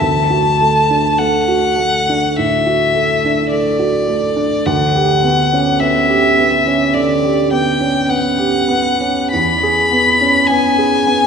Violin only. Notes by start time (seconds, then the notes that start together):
0.00 A5
1.18 F#5
2.37 E5
3.51 D5
4.65 F#5
5.80 E5
6.94 D5
7.52 G5
8.09 F#5
9.32 B5
10.46 G#5